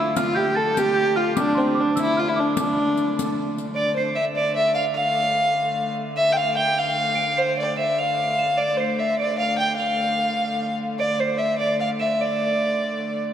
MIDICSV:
0, 0, Header, 1, 5, 480
1, 0, Start_track
1, 0, Key_signature, -1, "minor"
1, 0, Tempo, 401875
1, 185, Time_signature, 6, 3, 24, 8
1, 15926, End_track
2, 0, Start_track
2, 0, Title_t, "Celesta"
2, 0, Program_c, 0, 8
2, 0, Note_on_c, 0, 88, 81
2, 193, Note_off_c, 0, 88, 0
2, 197, Note_on_c, 0, 89, 85
2, 412, Note_on_c, 0, 91, 80
2, 438, Note_off_c, 0, 89, 0
2, 657, Note_on_c, 0, 93, 78
2, 666, Note_off_c, 0, 91, 0
2, 887, Note_on_c, 0, 91, 79
2, 909, Note_off_c, 0, 93, 0
2, 1113, Note_off_c, 0, 91, 0
2, 1127, Note_on_c, 0, 91, 80
2, 1384, Note_off_c, 0, 91, 0
2, 1384, Note_on_c, 0, 89, 84
2, 1609, Note_off_c, 0, 89, 0
2, 1625, Note_on_c, 0, 86, 78
2, 1848, Note_on_c, 0, 84, 73
2, 1873, Note_off_c, 0, 86, 0
2, 2089, Note_on_c, 0, 86, 73
2, 2105, Note_off_c, 0, 84, 0
2, 2321, Note_off_c, 0, 86, 0
2, 2337, Note_on_c, 0, 88, 75
2, 2590, Note_off_c, 0, 88, 0
2, 2591, Note_on_c, 0, 89, 78
2, 2820, Note_on_c, 0, 86, 74
2, 2837, Note_off_c, 0, 89, 0
2, 3051, Note_off_c, 0, 86, 0
2, 3065, Note_on_c, 0, 86, 69
2, 3980, Note_off_c, 0, 86, 0
2, 4492, Note_on_c, 0, 98, 74
2, 4748, Note_off_c, 0, 98, 0
2, 4748, Note_on_c, 0, 96, 70
2, 4971, Note_on_c, 0, 100, 77
2, 4996, Note_off_c, 0, 96, 0
2, 5225, Note_on_c, 0, 98, 70
2, 5228, Note_off_c, 0, 100, 0
2, 5708, Note_on_c, 0, 101, 76
2, 5722, Note_off_c, 0, 98, 0
2, 5925, Note_off_c, 0, 101, 0
2, 5939, Note_on_c, 0, 101, 78
2, 7097, Note_off_c, 0, 101, 0
2, 7369, Note_on_c, 0, 100, 81
2, 7628, Note_off_c, 0, 100, 0
2, 7631, Note_on_c, 0, 101, 79
2, 7846, Note_on_c, 0, 103, 86
2, 7878, Note_off_c, 0, 101, 0
2, 8094, Note_on_c, 0, 101, 77
2, 8106, Note_off_c, 0, 103, 0
2, 8542, Note_on_c, 0, 98, 78
2, 8549, Note_off_c, 0, 101, 0
2, 8802, Note_on_c, 0, 96, 77
2, 8814, Note_off_c, 0, 98, 0
2, 9026, Note_on_c, 0, 98, 76
2, 9064, Note_off_c, 0, 96, 0
2, 9286, Note_on_c, 0, 100, 73
2, 9297, Note_off_c, 0, 98, 0
2, 9536, Note_on_c, 0, 101, 73
2, 9546, Note_off_c, 0, 100, 0
2, 10018, Note_on_c, 0, 100, 76
2, 10038, Note_off_c, 0, 101, 0
2, 10246, Note_on_c, 0, 98, 76
2, 10272, Note_off_c, 0, 100, 0
2, 10506, Note_off_c, 0, 98, 0
2, 10513, Note_on_c, 0, 96, 74
2, 10986, Note_on_c, 0, 98, 71
2, 11007, Note_off_c, 0, 96, 0
2, 11230, Note_on_c, 0, 101, 75
2, 11235, Note_off_c, 0, 98, 0
2, 11471, Note_on_c, 0, 103, 81
2, 11478, Note_off_c, 0, 101, 0
2, 11702, Note_on_c, 0, 101, 75
2, 11718, Note_off_c, 0, 103, 0
2, 12858, Note_off_c, 0, 101, 0
2, 13134, Note_on_c, 0, 98, 75
2, 13365, Note_off_c, 0, 98, 0
2, 13383, Note_on_c, 0, 96, 72
2, 13864, Note_on_c, 0, 98, 67
2, 13880, Note_off_c, 0, 96, 0
2, 14329, Note_on_c, 0, 100, 75
2, 14361, Note_off_c, 0, 98, 0
2, 14584, Note_on_c, 0, 98, 65
2, 14586, Note_off_c, 0, 100, 0
2, 15738, Note_off_c, 0, 98, 0
2, 15926, End_track
3, 0, Start_track
3, 0, Title_t, "Fiddle"
3, 0, Program_c, 1, 110
3, 0, Note_on_c, 1, 64, 85
3, 199, Note_off_c, 1, 64, 0
3, 210, Note_on_c, 1, 65, 96
3, 429, Note_on_c, 1, 67, 96
3, 447, Note_off_c, 1, 65, 0
3, 674, Note_on_c, 1, 69, 97
3, 692, Note_off_c, 1, 67, 0
3, 924, Note_on_c, 1, 67, 104
3, 941, Note_off_c, 1, 69, 0
3, 1393, Note_on_c, 1, 65, 89
3, 1411, Note_off_c, 1, 67, 0
3, 1630, Note_off_c, 1, 65, 0
3, 1659, Note_on_c, 1, 62, 95
3, 1887, Note_on_c, 1, 60, 85
3, 1905, Note_off_c, 1, 62, 0
3, 2153, Note_on_c, 1, 62, 83
3, 2170, Note_off_c, 1, 60, 0
3, 2370, Note_off_c, 1, 62, 0
3, 2399, Note_on_c, 1, 64, 95
3, 2618, Note_on_c, 1, 65, 92
3, 2636, Note_off_c, 1, 64, 0
3, 2729, Note_on_c, 1, 64, 86
3, 2747, Note_off_c, 1, 65, 0
3, 2861, Note_on_c, 1, 62, 79
3, 2879, Note_off_c, 1, 64, 0
3, 3085, Note_off_c, 1, 62, 0
3, 3095, Note_on_c, 1, 62, 89
3, 3994, Note_off_c, 1, 62, 0
3, 4479, Note_on_c, 1, 74, 86
3, 4716, Note_off_c, 1, 74, 0
3, 4731, Note_on_c, 1, 72, 71
3, 4951, Note_off_c, 1, 72, 0
3, 4959, Note_on_c, 1, 76, 81
3, 5074, Note_off_c, 1, 76, 0
3, 5205, Note_on_c, 1, 74, 87
3, 5440, Note_off_c, 1, 74, 0
3, 5448, Note_on_c, 1, 76, 84
3, 5661, Note_off_c, 1, 76, 0
3, 5668, Note_on_c, 1, 77, 88
3, 5786, Note_off_c, 1, 77, 0
3, 5916, Note_on_c, 1, 77, 98
3, 7086, Note_off_c, 1, 77, 0
3, 7366, Note_on_c, 1, 76, 99
3, 7556, Note_on_c, 1, 79, 66
3, 7574, Note_off_c, 1, 76, 0
3, 7606, Note_on_c, 1, 77, 92
3, 7624, Note_off_c, 1, 79, 0
3, 7840, Note_off_c, 1, 77, 0
3, 7847, Note_on_c, 1, 79, 97
3, 8111, Note_on_c, 1, 77, 97
3, 8129, Note_off_c, 1, 79, 0
3, 8818, Note_on_c, 1, 72, 93
3, 8836, Note_off_c, 1, 77, 0
3, 9058, Note_off_c, 1, 72, 0
3, 9065, Note_on_c, 1, 74, 82
3, 9286, Note_off_c, 1, 74, 0
3, 9293, Note_on_c, 1, 76, 85
3, 9549, Note_on_c, 1, 77, 95
3, 9567, Note_off_c, 1, 76, 0
3, 10240, Note_on_c, 1, 74, 89
3, 10258, Note_off_c, 1, 77, 0
3, 10480, Note_on_c, 1, 72, 77
3, 10497, Note_off_c, 1, 74, 0
3, 10736, Note_on_c, 1, 76, 78
3, 10753, Note_off_c, 1, 72, 0
3, 10965, Note_off_c, 1, 76, 0
3, 10972, Note_on_c, 1, 74, 86
3, 11200, Note_off_c, 1, 74, 0
3, 11207, Note_on_c, 1, 77, 92
3, 11438, Note_off_c, 1, 77, 0
3, 11445, Note_on_c, 1, 79, 91
3, 11653, Note_off_c, 1, 79, 0
3, 11660, Note_on_c, 1, 77, 99
3, 12837, Note_off_c, 1, 77, 0
3, 13127, Note_on_c, 1, 74, 85
3, 13380, Note_on_c, 1, 72, 75
3, 13398, Note_off_c, 1, 74, 0
3, 13592, Note_on_c, 1, 76, 80
3, 13610, Note_off_c, 1, 72, 0
3, 13828, Note_off_c, 1, 76, 0
3, 13835, Note_on_c, 1, 74, 82
3, 14074, Note_off_c, 1, 74, 0
3, 14096, Note_on_c, 1, 77, 87
3, 14207, Note_off_c, 1, 77, 0
3, 14338, Note_on_c, 1, 76, 77
3, 14590, Note_on_c, 1, 74, 82
3, 14608, Note_off_c, 1, 76, 0
3, 15788, Note_off_c, 1, 74, 0
3, 15926, End_track
4, 0, Start_track
4, 0, Title_t, "Hurdy-gurdy"
4, 0, Program_c, 2, 110
4, 0, Note_on_c, 2, 50, 67
4, 0, Note_on_c, 2, 57, 68
4, 4526, Note_off_c, 2, 50, 0
4, 4526, Note_on_c, 2, 50, 66
4, 4534, Note_off_c, 2, 57, 0
4, 4534, Note_on_c, 2, 57, 67
4, 10255, Note_off_c, 2, 57, 0
4, 10255, Note_on_c, 2, 57, 69
4, 10260, Note_off_c, 2, 50, 0
4, 10260, Note_on_c, 2, 50, 68
4, 15926, Note_off_c, 2, 50, 0
4, 15926, Note_off_c, 2, 57, 0
4, 15926, End_track
5, 0, Start_track
5, 0, Title_t, "Riq"
5, 197, Note_on_c, 9, 54, 57
5, 316, Note_off_c, 9, 54, 0
5, 921, Note_on_c, 9, 54, 45
5, 1041, Note_off_c, 9, 54, 0
5, 1633, Note_on_c, 9, 54, 56
5, 1752, Note_off_c, 9, 54, 0
5, 2351, Note_on_c, 9, 54, 49
5, 2470, Note_off_c, 9, 54, 0
5, 3068, Note_on_c, 9, 54, 60
5, 3187, Note_off_c, 9, 54, 0
5, 3552, Note_on_c, 9, 54, 19
5, 3671, Note_off_c, 9, 54, 0
5, 3810, Note_on_c, 9, 54, 50
5, 3930, Note_off_c, 9, 54, 0
5, 4280, Note_on_c, 9, 54, 22
5, 4399, Note_off_c, 9, 54, 0
5, 15926, End_track
0, 0, End_of_file